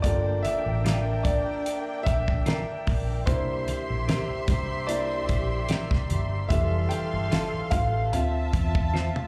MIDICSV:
0, 0, Header, 1, 7, 480
1, 0, Start_track
1, 0, Tempo, 809061
1, 24, Time_signature, 4, 2, 24, 8
1, 5502, End_track
2, 0, Start_track
2, 0, Title_t, "String section"
2, 0, Program_c, 0, 48
2, 20, Note_on_c, 0, 62, 86
2, 20, Note_on_c, 0, 79, 96
2, 21, Note_on_c, 0, 70, 77
2, 1918, Note_off_c, 0, 62, 0
2, 1918, Note_off_c, 0, 70, 0
2, 1918, Note_off_c, 0, 79, 0
2, 1941, Note_on_c, 0, 76, 84
2, 1942, Note_on_c, 0, 67, 80
2, 1943, Note_on_c, 0, 84, 92
2, 3838, Note_off_c, 0, 67, 0
2, 3838, Note_off_c, 0, 76, 0
2, 3839, Note_off_c, 0, 84, 0
2, 3858, Note_on_c, 0, 77, 84
2, 3859, Note_on_c, 0, 69, 90
2, 3859, Note_on_c, 0, 84, 87
2, 4800, Note_off_c, 0, 77, 0
2, 4801, Note_off_c, 0, 69, 0
2, 4801, Note_off_c, 0, 84, 0
2, 4821, Note_on_c, 0, 65, 82
2, 4822, Note_on_c, 0, 76, 77
2, 4822, Note_on_c, 0, 81, 86
2, 5502, Note_off_c, 0, 65, 0
2, 5502, Note_off_c, 0, 76, 0
2, 5502, Note_off_c, 0, 81, 0
2, 5502, End_track
3, 0, Start_track
3, 0, Title_t, "Clean electric guitar"
3, 0, Program_c, 1, 27
3, 502, Note_on_c, 1, 65, 74
3, 510, Note_on_c, 1, 70, 77
3, 514, Note_on_c, 1, 74, 74
3, 585, Note_off_c, 1, 65, 0
3, 589, Note_off_c, 1, 70, 0
3, 592, Note_off_c, 1, 74, 0
3, 1459, Note_on_c, 1, 65, 70
3, 1465, Note_on_c, 1, 70, 75
3, 1470, Note_on_c, 1, 74, 75
3, 1544, Note_off_c, 1, 65, 0
3, 1547, Note_off_c, 1, 70, 0
3, 1549, Note_off_c, 1, 74, 0
3, 2420, Note_on_c, 1, 67, 83
3, 2427, Note_on_c, 1, 70, 86
3, 2432, Note_on_c, 1, 76, 81
3, 2504, Note_off_c, 1, 67, 0
3, 2508, Note_off_c, 1, 70, 0
3, 2510, Note_off_c, 1, 76, 0
3, 3378, Note_on_c, 1, 67, 81
3, 3385, Note_on_c, 1, 70, 75
3, 3388, Note_on_c, 1, 76, 95
3, 3463, Note_off_c, 1, 67, 0
3, 3466, Note_off_c, 1, 70, 0
3, 3468, Note_off_c, 1, 76, 0
3, 4339, Note_on_c, 1, 65, 80
3, 4346, Note_on_c, 1, 69, 76
3, 4351, Note_on_c, 1, 76, 90
3, 4423, Note_off_c, 1, 65, 0
3, 4427, Note_off_c, 1, 69, 0
3, 4429, Note_off_c, 1, 76, 0
3, 5302, Note_on_c, 1, 65, 85
3, 5308, Note_on_c, 1, 72, 89
3, 5314, Note_on_c, 1, 76, 88
3, 5384, Note_off_c, 1, 65, 0
3, 5388, Note_off_c, 1, 72, 0
3, 5390, Note_off_c, 1, 76, 0
3, 5502, End_track
4, 0, Start_track
4, 0, Title_t, "Grand piano"
4, 0, Program_c, 2, 0
4, 0, Control_c, 2, 64, 127
4, 13, Note_on_c, 2, 74, 101
4, 25, Note_on_c, 2, 69, 60
4, 26, Note_on_c, 2, 58, 53
4, 32, Control_c, 2, 64, 0
4, 32, Note_on_c, 2, 65, 60
4, 136, Control_c, 2, 64, 127
4, 252, Note_on_c, 2, 76, 98
4, 266, Note_off_c, 2, 74, 0
4, 721, Note_off_c, 2, 58, 0
4, 721, Note_off_c, 2, 69, 0
4, 724, Note_off_c, 2, 65, 0
4, 731, Note_on_c, 2, 74, 90
4, 753, Note_off_c, 2, 76, 0
4, 1205, Note_on_c, 2, 76, 102
4, 1232, Note_off_c, 2, 74, 0
4, 1934, Note_on_c, 2, 72, 94
4, 1942, Note_on_c, 2, 58, 58
4, 1944, Note_on_c, 2, 62, 57
4, 1948, Note_on_c, 2, 64, 65
4, 1950, Control_c, 2, 64, 0
4, 1956, Note_off_c, 2, 76, 0
4, 2053, Control_c, 2, 64, 127
4, 2269, Note_off_c, 2, 58, 0
4, 2270, Note_off_c, 2, 62, 0
4, 2272, Note_off_c, 2, 64, 0
4, 2887, Note_on_c, 2, 74, 92
4, 2894, Note_on_c, 2, 58, 51
4, 2896, Note_on_c, 2, 62, 47
4, 2901, Note_on_c, 2, 64, 55
4, 2927, Note_off_c, 2, 72, 0
4, 3115, Note_off_c, 2, 58, 0
4, 3116, Note_off_c, 2, 62, 0
4, 3118, Note_off_c, 2, 64, 0
4, 3847, Note_on_c, 2, 76, 102
4, 3854, Note_on_c, 2, 55, 60
4, 3855, Note_on_c, 2, 57, 52
4, 3861, Note_on_c, 2, 52, 65
4, 3869, Control_c, 2, 64, 0
4, 3884, Note_off_c, 2, 74, 0
4, 3958, Control_c, 2, 64, 127
4, 4086, Note_on_c, 2, 79, 93
4, 4102, Note_off_c, 2, 76, 0
4, 4550, Note_off_c, 2, 79, 0
4, 4554, Note_off_c, 2, 55, 0
4, 4555, Note_off_c, 2, 57, 0
4, 4558, Note_off_c, 2, 52, 0
4, 4571, Note_on_c, 2, 77, 109
4, 4823, Note_on_c, 2, 65, 59
4, 4826, Note_on_c, 2, 60, 54
4, 4828, Note_on_c, 2, 76, 63
4, 4830, Control_c, 2, 64, 0
4, 4936, Control_c, 2, 64, 127
4, 5502, Note_off_c, 2, 60, 0
4, 5502, Note_off_c, 2, 65, 0
4, 5502, Note_off_c, 2, 76, 0
4, 5502, Note_off_c, 2, 77, 0
4, 5502, End_track
5, 0, Start_track
5, 0, Title_t, "Fingered electric bass"
5, 0, Program_c, 3, 33
5, 24, Note_on_c, 3, 31, 96
5, 237, Note_off_c, 3, 31, 0
5, 392, Note_on_c, 3, 33, 83
5, 819, Note_off_c, 3, 33, 0
5, 1227, Note_on_c, 3, 34, 101
5, 1438, Note_off_c, 3, 34, 0
5, 1707, Note_on_c, 3, 34, 92
5, 1919, Note_off_c, 3, 34, 0
5, 1943, Note_on_c, 3, 36, 96
5, 2156, Note_off_c, 3, 36, 0
5, 2315, Note_on_c, 3, 34, 77
5, 2412, Note_off_c, 3, 34, 0
5, 2660, Note_on_c, 3, 36, 93
5, 3087, Note_off_c, 3, 36, 0
5, 3143, Note_on_c, 3, 34, 94
5, 3356, Note_off_c, 3, 34, 0
5, 3508, Note_on_c, 3, 36, 88
5, 3623, Note_on_c, 3, 31, 102
5, 3632, Note_off_c, 3, 36, 0
5, 3836, Note_off_c, 3, 31, 0
5, 3860, Note_on_c, 3, 29, 100
5, 4074, Note_off_c, 3, 29, 0
5, 4232, Note_on_c, 3, 31, 86
5, 4330, Note_off_c, 3, 31, 0
5, 4581, Note_on_c, 3, 33, 82
5, 4820, Note_off_c, 3, 33, 0
5, 4820, Note_on_c, 3, 38, 91
5, 5034, Note_off_c, 3, 38, 0
5, 5064, Note_on_c, 3, 40, 104
5, 5391, Note_off_c, 3, 40, 0
5, 5502, End_track
6, 0, Start_track
6, 0, Title_t, "Muted fingered electric bass strokes"
6, 2552, Note_on_c, 9, 29, 50
6, 2611, Note_off_c, 9, 29, 0
6, 4474, Note_on_c, 9, 29, 54
6, 4533, Note_off_c, 9, 29, 0
6, 5502, End_track
7, 0, Start_track
7, 0, Title_t, "Drums"
7, 23, Note_on_c, 9, 36, 110
7, 25, Note_on_c, 9, 42, 103
7, 27, Note_on_c, 9, 62, 57
7, 82, Note_off_c, 9, 36, 0
7, 84, Note_off_c, 9, 42, 0
7, 86, Note_off_c, 9, 62, 0
7, 265, Note_on_c, 9, 42, 78
7, 269, Note_on_c, 9, 62, 47
7, 324, Note_off_c, 9, 42, 0
7, 329, Note_off_c, 9, 62, 0
7, 508, Note_on_c, 9, 63, 80
7, 509, Note_on_c, 9, 42, 89
7, 514, Note_on_c, 9, 38, 106
7, 567, Note_off_c, 9, 63, 0
7, 568, Note_off_c, 9, 42, 0
7, 573, Note_off_c, 9, 38, 0
7, 741, Note_on_c, 9, 36, 104
7, 741, Note_on_c, 9, 42, 92
7, 745, Note_on_c, 9, 62, 37
7, 800, Note_off_c, 9, 36, 0
7, 800, Note_off_c, 9, 42, 0
7, 804, Note_off_c, 9, 62, 0
7, 986, Note_on_c, 9, 42, 89
7, 1045, Note_off_c, 9, 42, 0
7, 1222, Note_on_c, 9, 62, 50
7, 1225, Note_on_c, 9, 36, 93
7, 1226, Note_on_c, 9, 42, 82
7, 1281, Note_off_c, 9, 62, 0
7, 1285, Note_off_c, 9, 36, 0
7, 1286, Note_off_c, 9, 42, 0
7, 1353, Note_on_c, 9, 36, 102
7, 1412, Note_off_c, 9, 36, 0
7, 1461, Note_on_c, 9, 42, 84
7, 1461, Note_on_c, 9, 63, 65
7, 1474, Note_on_c, 9, 38, 114
7, 1520, Note_off_c, 9, 42, 0
7, 1520, Note_off_c, 9, 63, 0
7, 1533, Note_off_c, 9, 38, 0
7, 1702, Note_on_c, 9, 46, 48
7, 1702, Note_on_c, 9, 63, 73
7, 1705, Note_on_c, 9, 36, 90
7, 1761, Note_off_c, 9, 46, 0
7, 1762, Note_off_c, 9, 63, 0
7, 1764, Note_off_c, 9, 36, 0
7, 1940, Note_on_c, 9, 42, 110
7, 1942, Note_on_c, 9, 36, 127
7, 1943, Note_on_c, 9, 62, 58
7, 2000, Note_off_c, 9, 42, 0
7, 2001, Note_off_c, 9, 36, 0
7, 2002, Note_off_c, 9, 62, 0
7, 2182, Note_on_c, 9, 42, 78
7, 2186, Note_on_c, 9, 62, 50
7, 2242, Note_off_c, 9, 42, 0
7, 2246, Note_off_c, 9, 62, 0
7, 2425, Note_on_c, 9, 42, 90
7, 2425, Note_on_c, 9, 63, 86
7, 2429, Note_on_c, 9, 38, 108
7, 2484, Note_off_c, 9, 42, 0
7, 2484, Note_off_c, 9, 63, 0
7, 2489, Note_off_c, 9, 38, 0
7, 2657, Note_on_c, 9, 42, 91
7, 2658, Note_on_c, 9, 36, 102
7, 2665, Note_on_c, 9, 64, 77
7, 2716, Note_off_c, 9, 42, 0
7, 2717, Note_off_c, 9, 36, 0
7, 2725, Note_off_c, 9, 64, 0
7, 2899, Note_on_c, 9, 42, 92
7, 2959, Note_off_c, 9, 42, 0
7, 3137, Note_on_c, 9, 42, 80
7, 3140, Note_on_c, 9, 36, 85
7, 3143, Note_on_c, 9, 62, 47
7, 3196, Note_off_c, 9, 42, 0
7, 3199, Note_off_c, 9, 36, 0
7, 3202, Note_off_c, 9, 62, 0
7, 3373, Note_on_c, 9, 42, 86
7, 3380, Note_on_c, 9, 63, 62
7, 3387, Note_on_c, 9, 38, 106
7, 3433, Note_off_c, 9, 42, 0
7, 3439, Note_off_c, 9, 63, 0
7, 3446, Note_off_c, 9, 38, 0
7, 3506, Note_on_c, 9, 36, 98
7, 3518, Note_on_c, 9, 38, 37
7, 3565, Note_off_c, 9, 36, 0
7, 3578, Note_off_c, 9, 38, 0
7, 3618, Note_on_c, 9, 42, 68
7, 3623, Note_on_c, 9, 63, 70
7, 3678, Note_off_c, 9, 42, 0
7, 3682, Note_off_c, 9, 63, 0
7, 3859, Note_on_c, 9, 36, 116
7, 3859, Note_on_c, 9, 42, 110
7, 3860, Note_on_c, 9, 62, 54
7, 3918, Note_off_c, 9, 36, 0
7, 3918, Note_off_c, 9, 42, 0
7, 3919, Note_off_c, 9, 62, 0
7, 4098, Note_on_c, 9, 42, 75
7, 4105, Note_on_c, 9, 62, 49
7, 4157, Note_off_c, 9, 42, 0
7, 4164, Note_off_c, 9, 62, 0
7, 4341, Note_on_c, 9, 63, 79
7, 4344, Note_on_c, 9, 42, 92
7, 4348, Note_on_c, 9, 38, 114
7, 4400, Note_off_c, 9, 63, 0
7, 4403, Note_off_c, 9, 42, 0
7, 4408, Note_off_c, 9, 38, 0
7, 4575, Note_on_c, 9, 42, 87
7, 4578, Note_on_c, 9, 36, 108
7, 4585, Note_on_c, 9, 62, 36
7, 4585, Note_on_c, 9, 64, 86
7, 4634, Note_off_c, 9, 42, 0
7, 4638, Note_off_c, 9, 36, 0
7, 4644, Note_off_c, 9, 62, 0
7, 4644, Note_off_c, 9, 64, 0
7, 4824, Note_on_c, 9, 42, 82
7, 4883, Note_off_c, 9, 42, 0
7, 5063, Note_on_c, 9, 36, 92
7, 5063, Note_on_c, 9, 42, 76
7, 5064, Note_on_c, 9, 62, 46
7, 5123, Note_off_c, 9, 36, 0
7, 5123, Note_off_c, 9, 42, 0
7, 5124, Note_off_c, 9, 62, 0
7, 5191, Note_on_c, 9, 36, 108
7, 5251, Note_off_c, 9, 36, 0
7, 5302, Note_on_c, 9, 63, 65
7, 5314, Note_on_c, 9, 38, 61
7, 5361, Note_off_c, 9, 63, 0
7, 5373, Note_off_c, 9, 38, 0
7, 5434, Note_on_c, 9, 48, 68
7, 5494, Note_off_c, 9, 48, 0
7, 5502, End_track
0, 0, End_of_file